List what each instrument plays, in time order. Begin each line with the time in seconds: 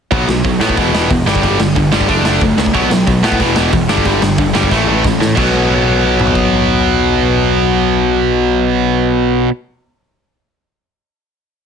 0.11 picked electric bass B1, distorted electric guitar B2 F#3 B3, kick, open hi-hat
0.28 picked electric bass B1, distorted electric guitar B2 F#3, snare
0.44 picked electric bass B1, distorted electric guitar B2 F#3, kick, open hi-hat
0.60 picked electric bass A2, distorted electric guitar B2 F#3 B3, snare
0.69 kick
0.77 picked electric bass E1, distorted electric guitar E2 B2 E3, kick, open hi-hat
0.93 picked electric bass E1, distorted electric guitar E2 B2 E3, snare
1.10 picked electric bass E1, distorted electric guitar E2 B2, kick, open hi-hat
1.26 picked electric bass G1, distorted electric guitar G2 D3 G3, snare
1.35 kick
1.43 picked electric bass G1, distorted electric guitar G2 D3 G3, kick, open hi-hat
1.60 picked electric bass G1, distorted electric guitar G2 D3, snare
1.76 picked electric bass G1, distorted electric guitar G2 D3, kick, open hi-hat
1.92 picked electric bass G1, distorted electric guitar G2 D3 G3, snare
2.01 kick
2.08 picked electric bass F#1, distorted electric guitar D3 A3 D4, kick, open hi-hat
2.25 picked electric bass F#1, distorted electric guitar D3 A3 D4, snare
2.40 picked electric bass F#1, distorted electric guitar D3 A3, kick, open hi-hat
2.57 picked electric bass C#2, distorted electric guitar D3 A3, snare
2.66 kick
2.74 picked electric bass B1, distorted electric guitar B2 F#3 B3, kick, open hi-hat
2.90 picked electric bass B1, distorted electric guitar B2 F#3, snare
3.07 picked electric bass B1, distorted electric guitar B2 F#3, kick, open hi-hat
3.23 picked electric bass A2, distorted electric guitar B2 F#3 B3, snare
3.32 kick
3.39 picked electric bass E1, distorted electric guitar E2 B2 E3, kick, open hi-hat
3.55 picked electric bass E1, distorted electric guitar E2 B2 E3, snare
3.72 picked electric bass E1, distorted electric guitar E2 B2, kick, open hi-hat
3.88 picked electric bass G1, distorted electric guitar G2 D3 G3, snare
3.98 kick
4.05 picked electric bass G1, distorted electric guitar G2 D3 G3, kick, open hi-hat
4.21 picked electric bass G1, distorted electric guitar G2 D3, snare
4.38 picked electric bass G1, distorted electric guitar G2 D3, kick, open hi-hat
4.54 picked electric bass G1, distorted electric guitar G2 D3 G3, snare
4.63 kick
4.71 picked electric bass A1, distorted electric guitar A2 E3 A3, kick, snare
4.87 picked electric bass A1, distorted electric guitar A2 E3 A3
5.04 picked electric bass A1, distorted electric guitar A2 E3, kick, snare
5.20 distorted electric guitar A2 E3, picked electric bass A2, snare
5.36 picked electric bass B1, distorted electric guitar B2 F#3, kick, crash
5.40 distorted electric guitar B3
6.20 mid tom
6.27 floor tom
6.35 kick